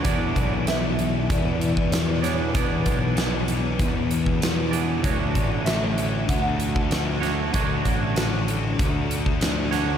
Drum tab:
HH |x-x-x-x-x-x-x-x-|x-x-x-x-x-x-x-x-|x-x-x-x-x-x-x-x-|x-x-x-x-x-x-x-x-|
SD |----o-------o-o-|----o-------o---|----o-------o-o-|----o-------o-o-|
BD |o-o-----o--o----|o-o-----o--o----|o-o-----o--o----|o-o-----o--o----|